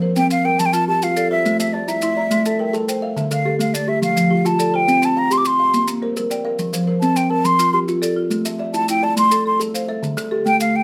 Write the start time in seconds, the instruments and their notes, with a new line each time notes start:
Already playing: marimba F3, kalimba C5
0.02 kalimba A#4, marimba C5
0.16 kalimba C4, flute G5, maracas
0.31 marimba C4, flute F5, maracas
0.45 kalimba A#4, flute G5
0.59 kalimba F3, flute A5, maracas
0.66 flute G5
0.73 marimba F4, flute A5, maracas
0.88 kalimba G4, flute A5
1.02 kalimba F4, flute F5, maracas
1.17 marimba A4 D5, maracas
1.31 marimba F4, kalimba C5, flute E5
1.46 kalimba A3, maracas
1.60 marimba A3, flute E5, kalimba E5, maracas
1.73 flute D5, kalimba D5, marimba A5
1.88 kalimba E4, flute E5, marimba A#5, maracas
2.02 marimba E4 C6, maracas
2.17 kalimba D5, marimba A#5
2.31 kalimba A3, marimba C6, maracas
2.45 marimba A4 A5, maracas
2.59 kalimba A#4, marimba G5
2.73 kalimba A4, marimba A5, maracas
2.88 marimba C5 G5, maracas
3.02 kalimba E5, marimba F5
3.17 kalimba D3, marimba E5, maracas
3.31 marimba D3, kalimba A4, flute F5, maracas
3.45 kalimba G4, marimba A4
3.59 kalimba A3, flute F5, maracas
3.74 marimba A3, flute D5, maracas
3.88 kalimba G4, flute E5
4.02 kalimba F3, flute F5, maracas
4.16 marimba F3, maracas
4.30 marimba F4, kalimba G4
4.45 kalimba F4, flute A5, maracas
4.59 marimba A4 D5, maracas
4.74 marimba F4, kalimba C5, flute G5
4.88 kalimba C4, maracas
5.02 marimba C4, kalimba G5, flute A5, maracas
5.16 kalimba F5, marimba G5, flute A#5
5.31 kalimba G4, flute C6, maracas
5.38 flute D6
5.45 marimba G4, flute C6, maracas
5.60 kalimba F5
5.74 kalimba A#3, maracas
5.88 marimba A#3, maracas
6.02 marimba A#4, kalimba C5
6.17 kalimba A#4, maracas
6.30 marimba D5 G5, maracas
6.45 marimba A#4, kalimba F5
6.59 kalimba F3, maracas
6.73 marimba F3, kalimba C5, maracas
6.87 kalimba A#4, marimba C5
7.01 kalimba C4, flute A5, maracas
7.16 marimba C4, flute G5, maracas
7.30 kalimba A#4, flute A5
7.45 kalimba F3, flute C6, maracas
7.59 marimba F4, maracas
7.73 marimba F4, kalimba G4, flute C6
7.88 kalimba F4, maracas
8.02 marimba A4 D5, maracas
8.16 marimba F4
8.30 kalimba A3, maracas
8.45 marimba A3, kalimba E5, maracas
8.59 kalimba D5, marimba E5
8.74 kalimba E4, flute A5, maracas
8.88 marimba E4, flute G5, maracas
9.03 kalimba D5, flute A5
9.16 kalimba A3, flute C6, maracas
9.31 marimba A4, maracas
9.46 marimba A4, flute C6
9.60 kalimba A4, maracas
9.74 marimba C5 F5, maracas
9.88 marimba A4, kalimba E5
10.03 kalimba D3, maracas
10.17 marimba D3, kalimba A4, maracas
10.31 kalimba G4, marimba A4
10.46 kalimba A3, flute G5, maracas
10.60 marimba A3, flute F5, maracas
10.76 flute G5